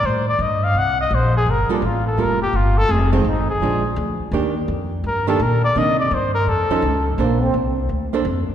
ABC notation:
X:1
M:4/4
L:1/16
Q:"Swing" 1/4=168
K:Bb
V:1 name="Trumpet"
c2 d2 e2 f2 _g2 e2 c2 _A2 | B2 D2 F2 A2 B2 G2 F2 A2 | _A2 C2 E2 A6 z4 | z8 B2 A2 B2 d2 |
e2 d2 c2 B2 A6- A z | z16 |]
V:2 name="Hollow-body jazz guitar"
z16 | z2 [G,B,FA]2 z4 [G,B,FA]2 z6 | z2 [E,_A,C]2 z4 [F,A,D]2 z6 | [E,B,DG]2 z8 [E,B,DG]2 z4 |
[E,B,D]2 z8 [F,^CEA]2 z4 | [B,DAc]2 z8 [B,DAc]2 z4 |]
V:3 name="Trombone"
z16 | z16 | z16 | z16 |
z16 | B,2 C2 z12 |]
V:4 name="Upright bass" clef=bass
A,,4 G,,4 C,,4 B,,,4 | G,,,2 z2 A,,,4 F,,,4 G,,,4 | F,,,4 _A,,,2 z2 B,,,4 D,,2 z2 | E,,4 F,,4 G,,4 B,,4 |
C,4 G,,4 F,,2 z2 ^C,,4 | B,,,4 C,,4 D,,4 F,,2 z2 |]